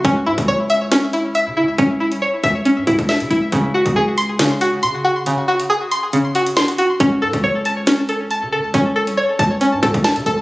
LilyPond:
<<
  \new Staff \with { instrumentName = "Synth pluck" } { \time 4/4 \key cis \minor \tempo 4 = 138 cis'8 e'8 cis''8 e''8 cis'8 e'8 e''8 e'8 | cis'8 e'8 cis''8 e''8 cis'8 e'8 e''8 e'8 | cis8 fis'8 gis'8 bis''8 cis8 fis'8 bis''8 fis'8 | cis8 fis'8 gis'8 bis''8 cis8 fis'8 bis''8 fis'8 |
cis'8 a'8 cis''8 a''8 cis'8 a'8 a''8 a'8 | cis'8 a'8 cis''8 a''8 cis'8 a'8 a''8 a'8 | }
  \new Staff \with { instrumentName = "808-style bass" } { \clef bass \time 4/4 \key cis \minor cis,8 gis,16 cis,16 cis,2~ cis,16 cis16. cis,16. | cis,8. bis,,16 r8 cis,8. gis,16 gis,16 cis,8 cis16 cis,8 | cis,8. cis,16 cis,2 cis4 | r1 |
cis,8 gis,16 cis,16 cis,2~ cis,16 cis16. cis,16. | cis,8. bis,,16 r8 cis,8. gis,16 gis,16 cis,8 cis16 cis,8 | }
  \new DrumStaff \with { instrumentName = "Drums" } \drummode { \time 4/4 <hh bd>8. <hh bd>16 r8 hh8 <hh sn>8 hh8 hh4 | <hh bd>8. hh16 r8 <hh bd>8 hh8 <hh bd>16 <hh bd>16 sn16 hh16 hh8 | <hh bd>8. <hh bd>16 r8 hh8 <hh sn>8 hh8 hh4 | hh8. hh16 r8 hh8 hh8 hh16 hh16 sn16 hh16 hh8 |
<hh bd>8. <hh bd>16 r8 hh8 <hh sn>8 hh8 hh4 | <hh bd>8. hh16 r8 <hh bd>8 hh8 <hh bd>16 <hh bd>16 sn16 hh16 hh8 | }
>>